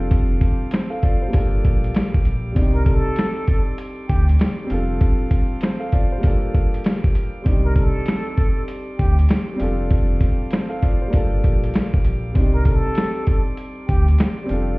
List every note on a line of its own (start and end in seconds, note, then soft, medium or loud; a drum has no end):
0.00 0.57 F1 loud
0.00 1.26 G3 medium
0.00 1.29 C4 medium
0.00 1.30 D4 medium
0.00 0.71 F4 medium
0.00 0.72 A4 medium
0.00 1.31 A4 medium
0.00 1.32 F5 medium
0.00 1.29 C6 medium
0.00 2.51 D6 medium
0.11 kick loud
0.11 closed hi-hat medium
0.41 kick loud
0.41 closed hi-hat medium
0.71 0.91 C5 medium
0.71 snare loud
0.71 snare medium
0.71 closed hi-hat loud
0.90 1.02 A4 medium
0.90 1.01 F5 medium
1.03 1.22 F4 medium
1.03 1.21 D5 medium
1.03 kick medium
1.03 closed hi-hat medium
1.22 1.51 C5 medium
1.28 2.50 G3 medium
1.28 2.52 A#3 medium
1.32 1.62 G1 loud
1.32 2.53 D4 medium
1.32 2.54 F4 medium
1.32 4.67 G4 medium
1.32 2.55 F5 medium
1.32 2.55 G5 medium
1.32 kick loud
1.32 closed hi-hat medium
1.37 2.55 A4 medium
1.65 1.92 A#1 medium
1.65 kick medium
1.65 closed hi-hat medium
1.84 closed hi-hat medium
1.95 snare loud
1.95 closed hi-hat medium
2.14 kick medium
2.25 2.53 A#1 loud
2.25 closed hi-hat medium
2.52 4.63 G3 medium
2.52 4.65 C4 medium
2.56 3.02 C2 loud
2.56 4.67 D4 medium
2.56 4.68 D#4 medium
2.56 4.69 D5 medium
2.56 6.20 C6 medium
2.56 4.68 D6 medium
2.56 kick loud
2.56 closed hi-hat medium
2.61 4.69 G4 medium
2.75 2.85 A#4 medium
2.86 3.74 A4 medium
2.86 kick loud
2.86 closed hi-hat medium
3.16 snare loud
3.16 snare medium
3.16 closed hi-hat loud
3.48 kick medium
3.48 closed hi-hat medium
3.78 closed hi-hat medium
4.08 4.37 D2 medium
4.08 4.26 G4 medium
4.08 kick medium
4.08 closed hi-hat medium
4.29 closed hi-hat medium
4.39 snare loud
4.39 closed hi-hat medium
4.64 6.17 G3 medium
4.64 6.18 C4 medium
4.69 4.98 F1 loud
4.69 6.20 D4 medium
4.69 5.61 F4 medium
4.69 6.22 A4 medium
4.69 7.43 F5 medium
4.69 7.43 D6 medium
4.69 closed hi-hat medium
4.74 5.62 A4 medium
5.01 kick loud
5.01 closed hi-hat medium
5.31 kick medium
5.31 closed hi-hat medium
5.61 5.81 C5 medium
5.61 snare loud
5.61 snare medium
5.61 closed hi-hat loud
5.79 5.91 A4 medium
5.79 5.91 F5 medium
5.92 6.12 F4 medium
5.92 6.11 D5 medium
5.92 kick medium
5.92 closed hi-hat medium
6.12 6.41 C5 medium
6.18 7.41 G3 medium
6.18 7.42 A#3 medium
6.23 7.43 D4 medium
6.23 7.44 F4 medium
6.23 7.43 G4 medium
6.23 7.45 G5 medium
6.23 kick loud
6.23 closed hi-hat medium
6.27 7.45 A4 medium
6.54 kick medium
6.54 closed hi-hat medium
6.74 closed hi-hat medium
6.84 snare loud
6.84 closed hi-hat medium
7.04 kick loud
7.15 closed hi-hat medium
7.42 9.53 G3 medium
7.42 9.55 C4 medium
7.42 9.57 G4 medium
7.42 9.57 D5 medium
7.42 11.08 C6 medium
7.42 12.31 D6 medium
7.42 kick loud
7.42 closed hi-hat medium
7.46 7.92 C2 loud
7.46 9.57 D4 medium
7.46 9.58 D#4 medium
7.51 9.59 G4 medium
7.65 7.75 A#4 medium
7.76 8.64 A4 medium
7.76 kick medium
7.76 closed hi-hat medium
8.06 snare loud
8.06 snare medium
8.06 closed hi-hat medium
8.37 kick medium
8.37 closed hi-hat medium
8.68 closed hi-hat medium
8.99 9.27 D2 medium
8.99 9.16 G4 medium
8.99 kick medium
8.99 closed hi-hat medium
9.19 closed hi-hat medium
9.29 snare loud
9.29 closed hi-hat medium
9.54 11.06 G3 medium
9.54 11.08 C4 medium
9.59 10.37 F1 loud
9.59 11.09 D4 medium
9.59 10.51 F4 medium
9.59 11.11 A4 medium
9.59 11.11 F5 medium
9.59 closed hi-hat medium
9.63 10.52 A4 medium
9.91 kick loud
9.91 closed hi-hat medium
10.21 kick medium
10.21 closed hi-hat medium
10.51 10.71 C5 medium
10.51 snare loud
10.51 snare medium
10.51 closed hi-hat medium
10.69 10.81 A4 medium
10.69 10.81 F5 medium
10.82 11.01 F4 medium
10.82 11.01 D5 medium
10.82 kick medium
10.82 closed hi-hat medium
11.02 11.31 C5 medium
11.08 12.30 G3 medium
11.08 12.31 A#3 medium
11.12 11.41 G1 loud
11.12 12.33 D4 medium
11.12 12.34 F4 medium
11.12 14.47 G4 medium
11.12 12.35 F5 medium
11.12 12.35 G5 medium
11.12 kick loud
11.12 closed hi-hat medium
11.17 12.35 A4 medium
11.44 11.72 A#1 medium
11.44 kick medium
11.44 closed hi-hat medium
11.64 closed hi-hat medium
11.74 snare loud
11.74 closed hi-hat medium
11.94 kick loud
12.04 12.33 A#1 medium
12.04 closed hi-hat medium
12.32 12.82 C2 loud
12.32 14.42 G3 medium
12.32 14.45 C4 medium
12.32 kick loud
12.32 closed hi-hat medium
12.36 14.46 D4 medium
12.36 14.48 D#4 medium
12.36 14.48 D5 medium
12.36 14.79 C6 medium
12.36 14.48 D6 medium
12.41 14.49 G4 medium
12.55 12.65 A#4 medium
12.65 13.54 A4 medium
12.65 kick medium
12.65 closed hi-hat medium
12.95 snare loud
12.95 snare medium
12.95 closed hi-hat medium
13.27 kick medium
13.27 closed hi-hat medium
13.57 closed hi-hat medium
13.88 14.17 D2 medium
13.88 14.06 G4 medium
13.88 kick medium
13.88 closed hi-hat medium
14.08 closed hi-hat medium
14.18 snare loud
14.18 closed hi-hat medium
14.44 14.79 G3 medium
14.44 14.79 C4 medium
14.49 14.79 F1 loud
14.49 14.79 D4 medium
14.49 14.79 F4 medium
14.49 14.79 A4 medium
14.49 14.79 F5 medium
14.49 14.79 D6 medium
14.49 closed hi-hat medium
14.53 14.79 A4 medium